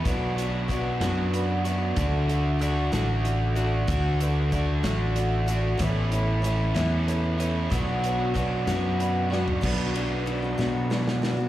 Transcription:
<<
  \new Staff \with { instrumentName = "Grand piano" } { \time 6/8 \key b \minor \tempo 4. = 63 << { r2 b''8 e''8 | r2. | r2. | r2. |
r2 b''16 g''16 fis''8 | r2. | } \\ { <fis' b' d''>8 <fis' b' d''>8 <fis' b' d''>4 <fis' b' d''>8 <fis' b' d''>8 | <fis' a' d''>8 <fis' a' e''>8 <fis' a' d''>4 <fis' a' d''>8 <fis' a' d''>8~ | <fis' a' d''>8 <fis' a' b'>8 <fis' a' d''>4 <fis' a' d''>8 <fis' a' d''>8 | <a' b' cis''>8 <a' b' cis''>8 <a' b' cis''>4 <a' b' cis''>8 <a' b' cis''>8 |
<fis' b' d''>8 <fis' b' cis''>8 <fis' b' d''>4 <fis' b' d''>8 <fis' b' d''>8 | <d' fis' b' d''>8 <d' fis' b' d''>8 <d' fis' b' d''>4 <d' fis' b' d''>8 <d' fis' b' d''>8 | } >> }
  \new Staff \with { instrumentName = "Overdriven electric guitar" } { \time 6/8 \key b \minor <b, fis b d' fis'>8 <b d' fis'>8 <fis b d' fis'>8 <b, fis b d' fis'>4 <b d' fis'>8 | <d a d' fis'>8 <a d' fis'>8 <d a d' fis'>8 <d a d' fis'>4 <a d' fis'>8 | <d a d' fis'>8 <a d' fis'>8 <d a d' fis'>8 <d a d' fis'>4 <a d' fis'>8 | <a, e a cis' e'>8 <a cis' e'>8 <e a cis' e'>8 <a, e a cis' e'>4 <a cis' e'>8 |
<b, fis b d' fis'>8 <b d' fis'>8 <fis b d' fis'>8 <b, fis b d' fis'>4 <b d' fis'>8 | <b, fis b d' fis' b'>2. | }
  \new Staff \with { instrumentName = "Steel-string acoustic guitar" } { \time 6/8 \key b \minor <b, fis b d' fis'>4 <fis b d' fis'>8 <b, fis b d' fis'>4 <b d' fis'>8 | <d a d' fis'>4 <d a d' fis'>8 <d a d' fis'>4 <a d' fis'>8 | <d a d' fis'>4 <d a d' fis'>8 <d a d' fis'>4 <a d' fis'>8 | <a, e b cis' e'>4 <e b cis' e'>8 <a, e b cis' e'>4 <b cis' e'>8 |
<b, fis b d' fis'>4 <fis b d' fis'>8 <b, fis b d' fis'>4 <b d' fis'>8 | <b, fis b d' fis'>8 <fis b d' fis'>8 <fis b d' fis'>16 <b d' fis'>16 <b, fis b d' fis'>8 <fis b d' fis'>8 <fis b d' fis'>16 <b d' fis'>16 | }
  \new Staff \with { instrumentName = "Fingered electric bass" } { \clef bass \time 6/8 \key b \minor b,,4. fis,4. | d,4. a,,4. | d,4. a,,4. | a,,4. e,4. |
b,,4. fis,4. | b,,4. b,4. | }
  \new DrumStaff \with { instrumentName = "Drums" } \drummode { \time 6/8 <hh bd>8 hh8 <hh bd>8 <hh sn>8 hh8 hh8 | <hh bd>8 hh8 hh8 <hh sn>8 hh8 hh8 | <hh bd>8 hh8 <hh bd>8 <hh sn>8 hh8 hh8 | <hh bd>8 hh8 hh8 <hh sn>8 hh8 hh8 |
<hh bd>8 hh8 <hh bd>8 <hh sn>8 hh8 sn16 tomfh16 | <cymc bd>8 cymr8 cymr8 sn8 sn16 sn16 sn8 | }
>>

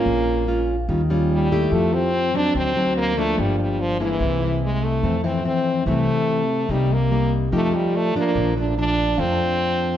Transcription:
<<
  \new Staff \with { instrumentName = "Tine electric piano" } { \time 4/4 \key f \major \tempo 4 = 145 r1 | r1 | r1 | r8 e''2~ e''8 r4 |
r2. d''4~ | d''8 r4. f''16 a''4.~ a''16 | }
  \new Staff \with { instrumentName = "French horn" } { \time 4/4 \key f \major bes4. r4. g4 | a8 c'4 d'8 c'4 bes8 a8 | g8 g8 f8 e4. gis8 a8~ | a8 c'8 c'4 a2 |
g8 bes4 r8 a8 g8 a8 bes8~ | bes8 d'8 d'4 c'2 | }
  \new Staff \with { instrumentName = "Nylon-string guitar" } { \time 4/4 \key f \major << { <aes des' f'>4 <aes des' f'>8 r8 <g des' f'>8 <g des' f'>4 <a e' g'>8~ | <a e' g'>4 r8 <ges c' ees'>4 <fis c' ees'>4 <f bes d'>8~ | <f bes d'>4. <aes bes e'>4 <gis bes e'>4. | <e a c'>8 <e a c'>8 <e a c'>4 <e a c'>4. r8 |
<g bes ees'>8 r8 <g bes ees'>4 <a ees' g'>4. <f d'>8~ | <f d'>8 <f a d'>8 <f a d'>4 <f a d'>2 | } \\ { bes,2 ees2 | f2 d2 | g,2 c2 | f,2 c2 |
c2 f2 | bes,2 f,2 | } >> }
  \new Staff \with { instrumentName = "Upright bass" } { \clef bass \time 4/4 \key f \major bes,,2 ees,2 | f,2 d,2 | g,,2 c,2 | f,2 c,8 r4. |
c,2 f,8 r4. | bes,,2 f,8 r4. | }
>>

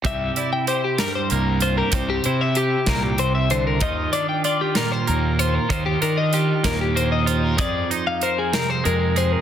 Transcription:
<<
  \new Staff \with { instrumentName = "Clean electric guitar" } { \time 6/8 \key c \minor \tempo 4. = 64 e''8 d''16 g''16 c''16 g'16 bes'16 c''16 bes'8 c''16 bes'16 | c''16 g'16 c''16 e''16 g'8 bes'16 g'16 c''16 e''16 c''16 bes'16 | ees''8 d''16 g''16 d''16 g'16 bes'16 c''16 bes'8 c''16 bes'16 | c''16 g'16 bes'16 ees''16 g'8 bes'16 g'16 c''16 ees''16 c''16 bes'16 |
d''8 c''16 f''16 c''16 aes'16 bes'16 c''16 bes'8 c''16 bes'16 | }
  \new Staff \with { instrumentName = "Clean electric guitar" } { \time 6/8 \key c \minor << { g'8 e'8 g'4 bes8 f'16 g'16 | g'8 e'8 g'2 | f'8 d'8 f'4 bes8 f'8 | f'8 d'8 f'4 bes8 f'8 |
aes'8 ees'8 bes'4 aes8 aes'8 | } \\ { c4. g,4. | c4. bes,8 c8 d8 | ees4. bes,4. | ees4. bes,4. |
f,4. c4. | } >> }
  \new Staff \with { instrumentName = "Fingered electric bass" } { \clef bass \time 6/8 \key c \minor c,8 r4. c,4 | c,8 c4 c,4. | ees,8 r4. ees,4 | ees,8 ees4 ees,4. |
f,8 r4. f,4 | }
  \new DrumStaff \with { instrumentName = "Drums" } \drummode { \time 6/8 <hh bd>8 hh8 hh8 <hh sn>8 hh8 hh8 | <hh bd>8 hh8 hh8 <hh bd sn>8 hh8 hh8 | <hh bd>8 hh8 hh8 <hh sn>8 hh8 hh8 | <hh bd>8 hh8 hh8 <hh bd sn>8 hh8 hh8 |
<hh bd>8 hh8 hh8 <hh sn>8 hh8 hh8 | }
>>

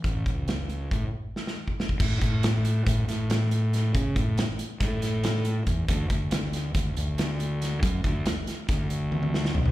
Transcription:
<<
  \new Staff \with { instrumentName = "Fingered electric bass" } { \clef bass \time 9/8 \key a \major \tempo 4. = 93 a,,8 cis,4. a,16 r2 r16 | a,8 a,4. a,8 a,2 | cis8 a,8 r4 a,2 e,8 | d,8 d,4. d,8 d,2 |
fis,8 d,8 r4 d,2 b,,8 | }
  \new DrumStaff \with { instrumentName = "Drums" } \drummode { \time 9/8 <hh bd>8 <hh bd>8 <hh sn>8 hh8 <hh bd>4 sn16 sn8 bd16 sn16 bd16 | <cymc bd>8 <hh bd>8 <hh sn>8 hh8 <hh bd>8 <hh sn>8 <hh sn>8 hh8 <hh sn>8 | <hh bd>8 <hh bd>8 <hh sn>8 hh8 <hh bd sn>8 <hh sn>8 <hh sn>8 hh8 <hh bd>8 | <hh bd>8 <hh bd>8 <hh sn>8 <hh sn>8 <hh bd sn>8 hh8 <hh sn>8 hh8 <hh sn>8 |
<hh bd>8 <hh bd>8 <hh sn>8 <hh sn>8 <hh bd sn>8 hh8 tommh16 tommh16 sn16 sn16 tomfh16 tomfh16 | }
>>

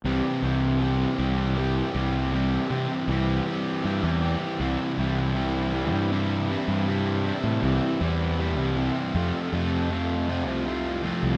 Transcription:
<<
  \new Staff \with { instrumentName = "Distorted electric guitar" } { \clef bass \time 6/8 \key c \major \tempo 4. = 53 <c e g c' g'>8 <g c' g'>8 <e g c' g'>8 <g c' g'>8 <e g c' g'>8 <g c' g'>8 | <c e g c' g'>8 <g c' g'>8 <e g c' g'>8 <g c' g'>8 <e g c' g'>8 <g c' g'>8 | <c e g c' e'>8 <c e g c' e'>8 <c e g c' e'>8 <c e g c' e'>8 <c e g c' e'>8 <c e g c' e'>8 | <c e g c' e'>8 <c e g c' e'>8 <c e g c' e'>8 <c e g c' e'>8 <c e g c' e'>8 <c e g c' e'>8 |
<f, c f a c' f'>8 <f, c f a c' f'>8 <f, c f a c' f'>8 <f, c f a c' f'>8 <f, c f a c' f'>8 <f, c f a c' f'>8 | }
  \new Staff \with { instrumentName = "Fingered electric bass" } { \clef bass \time 6/8 \key c \major c,16 r16 c,4 c,4 c,8~ | c,8 c16 r16 c,8 r8 g,16 e,8 r16 | c,16 r16 c,4~ c,16 g,4 g,16~ | g,8. a,16 c,16 r16 e,8. c,8 r16 |
f,16 r16 f,4~ f,16 c,4 c,16 | }
>>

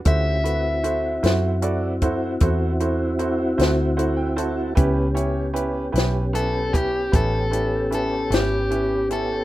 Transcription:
<<
  \new Staff \with { instrumentName = "Overdriven electric guitar" } { \time 12/8 \key a \mixolydian \tempo 4. = 51 e''2 r1 | r2 a'8 g'8 a'4 a'8 g'4 a'8 | }
  \new Staff \with { instrumentName = "Upright piano" } { \time 12/8 \key a \mixolydian << { r1 r4 fis''16 g''16 a''8 | r1. | } \\ { <e' fis' a' c''>8 <e' fis' a' b'>8 <e' fis' a' c''>8 <e' fis' a' c''>8 <e' fis' a' d''>8 <e' fis' a' c''>8 <e' fis' a' c''>8 <e' fis' a' c''>8 <e' fis' a' c''>8 <e' fis' a' c''>8 <e' fis' a' c''>8 <e' fis' a' c''>8 | <cis' e' g' b'>8 <cis' e' g' cis''>8 <cis' e' g' b'>8 <cis' e' g' b'>8 <cis' e' g' b'>8 <cis' e' g' b'>8 <cis' e' g' b'>8 <cis' e' g' b'>8 <cis' e' g' b'>8 <cis' e' g' b'>8 <cis' e' g' b'>8 <cis' e' g' a'>8 | } >> }
  \new Staff \with { instrumentName = "Tonewheel organ" } { \time 12/8 \key a \mixolydian <cis' f' g'>8 <c' e' fis'>1~ <c' e' fis'>4. | <b cis' g'>1. | }
  \new Staff \with { instrumentName = "Fingered electric bass" } { \clef bass \time 12/8 \key a \mixolydian d,4. fis,4. e,4. d,4. | cis,4. b,,4. a,,4. gis,,4. | }
  \new DrumStaff \with { instrumentName = "Drums" } \drummode { \time 12/8 <hh bd>8 hh8 hh8 <hh sn>8 hh8 <hh bd>8 <hh bd>8 hh8 hh8 <hh sn>8 hh8 hh8 | <hh bd>8 hh8 hh8 <hh sn>8 hh8 <hh bd>8 <hh bd>8 hh8 hh8 <hh sn>8 hh8 hh8 | }
>>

